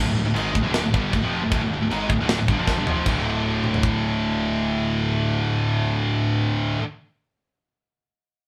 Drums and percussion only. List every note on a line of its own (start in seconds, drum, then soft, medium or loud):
0.36 china medium
0.55 kick medium
0.74 snare loud
0.74 china medium
0.94 kick medium
1.13 kick medium
1.13 china medium
1.52 kick loud
1.52 china medium
1.91 china medium
2.10 kick medium
2.29 snare loud
2.29 china medium
2.48 kick medium
2.67 kick medium
2.67 snare medium
2.87 floor tom medium
3.06 kick loud
3.06 crash medium
3.64 mid tom medium
3.74 floor tom medium
3.83 kick loud